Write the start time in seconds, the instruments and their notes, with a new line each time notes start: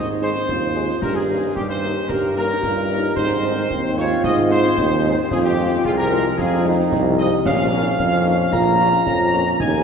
Already playing: tuba G#2, trombone section D#3 C4, euphonium D#4
0.21 french horn section G#3 D#4 G#4, trumpet section C5, woodwind section C5, snare
0.35 snare
0.48 tuba D#2, euphonium F4, concert bass drum, snare
0.75 french horn section G#3 D#4 G#4, snare
0.89 snare
1.01 tuba G2, trombone section D#3 C#4, euphonium G4, trumpet section A#4, woodwind section A#4, concert bass drum, snare, crash
1.15 trumpet section G#4, woodwind section G#4
1.30 french horn section A#3 C#4 D#4
1.55 tuba G2, euphonium D#4, woodwind section G4, trumpet section G4, concert bass drum
1.69 trumpet section C5, woodwind section C5
1.83 french horn section A#3 C#4 D#4, snare
2.09 tuba G2, euphonium G4, trumpet section A#4, woodwind section A#4, concert bass drum, snare
2.36 french horn section A#3 C#4 D#4, trumpet section A#4, woodwind section A#4, snare
2.50 snare
2.63 tuba G2, euphonium F4, concert bass drum, snare
2.90 french horn section A#3 C#4 D#4, euphonium D#4, snare
3.03 snare
3.16 tuba G#2, trombone section D#3 C4, trumpet section C5, woodwind section C5, concert bass drum, snare, crash
3.44 french horn section G#3 C4 D#4
3.71 tuba D#2, euphonium C4, concert bass drum
3.97 french horn section G#3 C4 D#4, euphonium F4, trumpet section C#5, woodwind section C#5, snare
4.23 tuba G#2, trumpet section D#5, woodwind section D#5, concert bass drum, snare
4.51 french horn section G#3 C4 D#4, trumpet section C5, woodwind section C5, snare
4.64 snare
4.78 tuba D#2, euphonium D#4, concert bass drum, snare
5.04 french horn section G#3 C4 D#4, euphonium D#4, snare
5.18 snare
5.31 tuba F2, trombone section F3 C4, euphonium F4, trumpet section G#4, woodwind section G#4, concert bass drum, snare, crash
5.44 woodwind section G4, trumpet section G4
5.58 french horn section G#3 C4 F4
5.85 tuba C2, woodwind section F4, trumpet section F4, euphonium G#4, concert bass drum
5.97 woodwind section A#4, trumpet section A#4
6.11 french horn section G#3 C4 F4, snare
6.38 tuba F2, euphonium F4, woodwind section G#4, trumpet section G#4, concert bass drum, snare
6.65 french horn section G#3 C4 F4, euphonium D#4
6.92 tuba C2, concert bass drum, snare
7.18 french horn section G#3 C4 F4, woodwind section D#5, trumpet section D#5
7.45 tuba A#1, trombone section F3 C#4, euphonium C#4, woodwind section F5, trumpet section F5, concert bass drum, snare, crash
7.73 french horn section A#3 C#4 F4, euphonium C4
7.99 tuba F2, euphonium C#4, concert bass drum
8.26 french horn section A#3 C#4 F4, euphonium D#4, snare
8.53 tuba A#1, euphonium F4, trumpet section A#5, woodwind section A#5, concert bass drum, snare
8.79 french horn section A#3 C#4 F4, snare
8.93 snare
9.06 tuba F2, euphonium C#4, concert bass drum, snare
9.33 french horn section A#3 C#4 F4, snare
9.47 snare
9.60 tuba D#2, trombone section F#3 A#3, euphonium D#4, trumpet section G#5, woodwind section G#5, concert bass drum, snare, crash